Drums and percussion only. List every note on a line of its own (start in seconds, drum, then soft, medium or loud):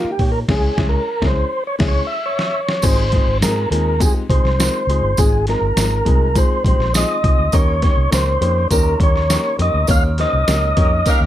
0.19 kick medium
0.19 open hi-hat soft
0.49 kick loud
0.49 snare loud
0.49 crash medium
0.78 kick loud
0.78 snare loud
1.22 kick loud
1.22 snare loud
1.80 kick loud
1.80 snare loud
1.80 crash medium
2.39 snare medium
2.69 snare medium
2.82 kick loud
2.82 closed hi-hat medium
2.82 crash loud
2.82 tambourine medium
3.12 kick medium
3.12 snare soft
3.12 closed hi-hat medium
3.42 snare loud
3.42 closed hi-hat loud
3.42 tambourine loud
3.72 closed hi-hat medium
4.00 kick medium
4.00 closed hi-hat medium
4.00 tambourine medium
4.30 kick loud
4.30 closed hi-hat medium
4.45 snare soft
4.60 snare loud
4.60 closed hi-hat medium
4.60 tambourine loud
4.90 closed hi-hat medium
5.17 kick loud
5.17 closed hi-hat loud
5.17 tambourine medium
5.47 snare soft
5.47 closed hi-hat medium
5.77 snare loud
5.77 closed hi-hat loud
5.77 tambourine loud
6.06 kick medium
6.06 closed hi-hat loud
6.35 kick loud
6.35 closed hi-hat medium
6.35 tambourine medium
6.65 kick loud
6.65 closed hi-hat medium
6.80 snare soft
6.94 snare loud
6.94 closed hi-hat medium
6.94 tambourine loud
7.24 kick loud
7.24 closed hi-hat medium
7.52 kick loud
7.52 closed hi-hat loud
7.52 tambourine medium
7.82 kick medium
7.82 snare soft
7.82 closed hi-hat medium
8.12 snare loud
8.12 closed hi-hat medium
8.12 tambourine loud
8.42 closed hi-hat medium
8.71 kick medium
8.71 closed hi-hat medium
8.71 tambourine medium
9.00 kick loud
9.00 closed hi-hat medium
9.16 snare soft
9.30 snare loud
9.30 closed hi-hat medium
9.30 tambourine loud
9.59 closed hi-hat medium
9.87 kick loud
9.87 closed hi-hat loud
9.87 tambourine loud
10.18 snare soft
10.18 closed hi-hat medium
10.48 snare loud
10.48 closed hi-hat loud
10.48 tambourine medium
10.77 kick medium
10.77 closed hi-hat medium
11.06 kick loud
11.06 closed hi-hat medium
11.06 tambourine medium